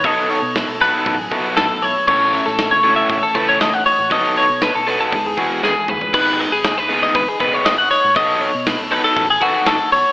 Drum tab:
CC |----------------|x---------------|----------------|x---------------|
HH |o-o-o-o-o-o---o-|--o-o-o-o-o-o-o-|o-o-o-o-o-o-----|--o-o-o-o-o-o-o-|
SD |----o-------o---|---oo-------o---|----o-------o---|----o-------o---|
T2 |----------------|----------------|--------------o-|----------------|
FT |----------------|----------------|---------------o|----------------|
BD |o-------o-o-----|o-------o-o-----|o-------o-o-----|o-------o-o-----|

CC |----------------|
HH |o-o-o-o-o-o-o-o-|
SD |----o-------o---|
T2 |----------------|
FT |----------------|
BD |o-------o-o-----|